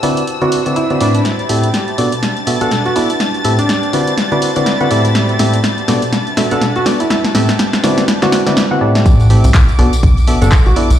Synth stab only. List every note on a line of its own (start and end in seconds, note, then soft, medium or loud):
0.03 0.23 D3 medium
0.03 0.23 C4 medium
0.03 0.23 E4 medium
0.03 0.23 F#4 medium
0.03 0.23 B4 medium
0.03 0.23 D5 loud
0.41 0.60 D3 medium
0.41 0.60 C4 medium
0.41 0.60 E4 medium
0.41 0.60 F#4 medium
0.41 0.60 B4 medium
0.41 0.60 D5 loud
0.66 0.84 D3 medium
0.66 0.84 C4 medium
0.66 0.84 E4 medium
0.66 0.84 F#4 medium
0.66 0.84 B4 medium
0.66 0.84 D5 medium
0.90 0.99 D3 medium
0.90 0.99 C4 medium
0.90 0.99 E4 medium
0.90 0.99 F#4 medium
0.90 0.99 B4 medium
0.90 0.99 D5 medium
1.01 1.21 A2 medium
1.01 1.21 C4 medium
1.01 1.21 E4 medium
1.01 1.21 F#4 medium
1.01 1.21 B4 medium
1.01 1.21 D5 loud
1.49 1.69 A2 medium
1.49 1.69 C4 medium
1.49 1.69 E4 medium
1.49 1.69 G4 medium
1.49 1.69 A4 medium
1.49 1.69 E5 medium
1.98 2.12 B2 medium
1.98 2.12 B3 medium
1.98 2.12 D4 medium
1.98 2.12 F#4 medium
1.98 2.12 A4 medium
1.98 2.12 D5 loud
2.47 2.59 B2 medium
2.47 2.59 B3 medium
2.47 2.59 D4 medium
2.47 2.59 F#4 medium
2.47 2.59 A4 medium
2.47 2.59 E5 medium
2.61 2.71 B2 loud
2.61 2.71 B3 medium
2.61 2.71 D4 medium
2.61 2.71 F#4 medium
2.61 2.71 A4 medium
2.61 2.71 F#5 loud
2.96 3.10 B3 medium
2.96 3.10 D4 medium
2.96 3.10 F#4 medium
2.96 3.10 A4 medium
2.96 3.10 D5 medium
3.45 3.59 A2 medium
3.45 3.59 C4 medium
3.45 3.59 E4 medium
3.45 3.59 G4 medium
3.45 3.59 A4 medium
3.45 3.59 E5 loud
3.93 4.13 D3 medium
3.93 4.13 C4 medium
3.93 4.13 E4 medium
3.93 4.13 F#4 medium
3.93 4.13 B4 medium
3.93 4.13 D5 loud
4.32 4.50 D3 medium
4.32 4.50 C4 medium
4.32 4.50 E4 medium
4.32 4.50 F#4 medium
4.32 4.50 B4 medium
4.32 4.50 D5 loud
4.56 4.75 D3 medium
4.56 4.75 C4 medium
4.56 4.75 E4 medium
4.56 4.75 F#4 medium
4.56 4.75 B4 medium
4.56 4.75 D5 loud
4.81 4.89 D3 medium
4.81 4.89 C4 medium
4.81 4.89 E4 medium
4.81 4.89 F#4 medium
4.81 4.89 B4 medium
4.81 4.89 F#5 loud
4.91 5.37 A2 medium
4.91 5.37 C4 medium
4.91 5.37 E4 medium
4.91 5.37 G4 medium
4.91 5.37 A4 medium
4.91 5.37 D5 medium
5.40 5.60 A2 medium
5.40 5.60 C4 medium
5.40 5.60 E4 medium
5.40 5.60 G4 medium
5.40 5.60 A4 medium
5.40 5.60 E5 medium
5.88 6.02 B2 loud
5.88 6.02 B3 medium
5.88 6.02 D4 medium
5.88 6.02 F#4 medium
5.88 6.02 A4 medium
5.88 6.02 D5 loud
6.37 6.49 B2 medium
6.37 6.49 B3 medium
6.37 6.49 D4 medium
6.37 6.49 F#4 medium
6.37 6.49 A4 medium
6.37 6.49 E5 medium
6.51 6.62 B2 loud
6.51 6.62 B3 medium
6.51 6.62 D4 medium
6.51 6.62 F#4 medium
6.51 6.62 A4 medium
6.51 6.62 F#5 loud
6.86 7.00 B3 medium
6.86 7.00 D4 medium
6.86 7.00 F#4 medium
6.86 7.00 A4 medium
6.86 7.00 D5 loud
7.35 7.49 A2 medium
7.35 7.49 C4 medium
7.35 7.49 E4 medium
7.35 7.49 G4 medium
7.35 7.49 A4 medium
7.35 7.49 E5 loud
7.84 8.04 D3 medium
7.84 8.04 C4 medium
7.84 8.04 E4 medium
7.84 8.04 F#4 medium
7.84 8.04 B4 medium
7.84 8.04 D5 loud
8.22 8.41 D3 loud
8.22 8.41 C4 medium
8.22 8.41 E4 medium
8.22 8.41 F#4 medium
8.22 8.41 B4 medium
8.22 8.41 D5 loud
8.47 8.65 D3 medium
8.47 8.65 C4 medium
8.47 8.65 E4 medium
8.47 8.65 F#4 medium
8.47 8.65 B4 medium
8.47 8.65 D5 loud
8.71 8.80 D3 medium
8.71 8.80 C4 medium
8.71 8.80 E4 medium
8.71 8.80 F#4 medium
8.71 8.80 B4 medium
8.71 8.80 F#5 loud
8.81 9.27 A2 medium
8.81 9.27 C4 medium
8.81 9.27 E4 medium
8.81 9.27 G4 medium
8.81 9.27 A4 medium
8.81 9.27 D5 loud
9.30 9.50 A2 medium
9.30 9.50 C4 medium
9.30 9.50 E4 medium
9.30 9.50 G4 medium
9.30 9.50 A4 medium
9.30 9.50 E5 medium
9.79 9.93 B2 loud
9.79 9.93 B3 medium
9.79 9.93 D4 medium
9.79 9.93 F#4 medium
9.79 9.93 A4 medium
9.79 9.93 D5 loud
10.27 10.39 B2 medium
10.27 10.40 B3 medium
10.27 10.39 D4 medium
10.27 10.39 F#4 medium
10.27 10.39 A4 medium
10.27 10.39 E5 medium
10.42 10.52 B2 loud
10.42 10.52 B3 medium
10.42 10.52 D4 medium
10.42 10.52 F#4 medium
10.42 10.52 A4 medium
10.42 10.52 F#5 loud
10.76 10.90 B3 medium
10.76 10.90 D4 medium
10.76 10.90 F#4 medium
10.76 10.90 A4 medium
10.76 10.90 D5 loud